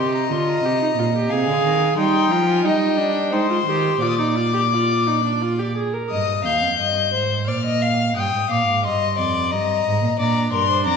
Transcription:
Already playing: cello C3, viola G4, violin D#5 C6
0.15 violin A#5
0.30 cello D3, viola F4, violin C6
0.49 violin A#5
0.64 cello C3, viola G4
0.82 viola D#4
0.97 cello A#2, viola F4
1.16 viola G4
1.29 cello C3, viola G#4, violin F5 G#5
1.47 cello D3
1.64 cello D#3
1.97 cello G3, viola D#4, violin G5 C6
2.30 cello F3, viola F4, violin A#5
2.49 violin G#5
2.63 cello G3, viola D#4, violin D#5 G5
2.98 viola D4
3.31 cello G#3, viola D#4, violin C5 C6
3.50 viola F4
3.66 cello D#3, viola G4
4.01 cello A#2, viola F4, violin D5 D6
4.08 violin D#6
4.15 viola D#4, violin D6
4.36 viola F4
4.54 viola G4
4.71 viola F4
5.07 viola D#4
5.24 viola D4
5.42 viola F4
5.59 viola G4
5.77 viola G#4
5.94 viola A#4
6.10 cello G2, violin D#5 D#6
6.44 cello D#2, violin F5 G6
6.62 cello F2
6.79 cello G2, violin D#5
7.13 cello G#2, violin C5
7.47 cello A#2, violin D5 F6
7.65 violin D#5
7.82 violin F5
8.16 cello G2, violin G5 D#6
8.34 cello G#2
8.50 cello A#2, violin F5 D6
8.67 cello G#2
8.84 cello G2, violin D#5 C6
9.18 cello F2, violin D5
9.51 cello G2, violin D#5 A#5
9.85 cello G#2
10.02 cello A#2
10.18 cello A#2, viola D4, violin D5 A#5
10.52 cello G2, violin A#4 C6
10.70 violin C5
10.86 cello F2, violin D5 A#5

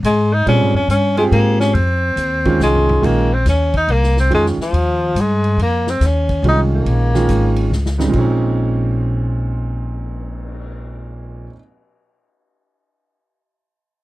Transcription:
0.03 upright bass G#2, tenor saxophone G#3, hi-hat pedal, ride
0.33 tenor saxophone D#4
0.46 upright bass A#2, grand piano G3 C4 F4 G#4, tenor saxophone C#4, ride
0.60 upright bass G#2
0.73 upright bass F2, tenor saxophone C#4
0.88 upright bass G2, tenor saxophone C#4, hi-hat pedal, ride
1.17 tenor saxophone G#3, grand piano C4 F4 G4 G#4, ride
1.31 upright bass G#2, tenor saxophone A#3, ride
1.60 tenor saxophone C#4, snare
1.74 upright bass F2, tenor saxophone C4, ride
2.16 upright bass D#2, hi-hat pedal, ride
2.45 grand piano D#3 G#3 C#4 F4, kick, ride
2.59 upright bass C2, tenor saxophone G#3, snare, hi-hat pedal
2.75 floor tom
2.89 floor tom
3.01 upright bass A#1, grand piano D#3 G#3 C#4 F4, tenor saxophone A#3, kick, crash
3.33 tenor saxophone C4
3.45 upright bass D#2, tenor saxophone C#4, snare, hi-hat pedal, ride
3.74 tenor saxophone D#4, kick, ride
3.88 upright bass C2, tenor saxophone A#3, ride
4.03 snare
4.17 tenor saxophone C4, snare
4.30 upright bass F2, grand piano D#3 G#3 C#4 F4, ride
4.34 tenor saxophone G#3
4.46 snare
4.57 muted upright bass stroke, snare
4.62 tenor saxophone F3
4.73 upright bass D#2, ride
5.15 upright bass G2, hi-hat pedal, ride
5.20 tenor saxophone G#3
5.44 ride
5.57 upright bass F2, ride
5.62 tenor saxophone A#3
5.87 tenor saxophone C4, snare
6.00 upright bass D#2, snare, hi-hat pedal, ride
6.06 tenor saxophone C#4
6.29 kick, ride
6.42 upright bass C2, grand piano D#3 G#3 C#4 F4, ride
6.48 tenor saxophone D#4
6.75 tenor saxophone A#3
6.86 upright bass A#1, ride
7.14 grand piano D#3 G#3 C#4 F4, snare
7.27 upright bass G#1, hi-hat pedal, ride
7.56 ride
7.70 upright bass C#2, snare
7.86 snare
7.98 grand piano G#2 C#3 G3 C4 D#4, snare
8.09 grand piano A#2 F3
8.13 upright bass A#1, grand piano G#3 C4, kick, crash
8.18 grand piano C#4 D#4
8.42 cymbal swell

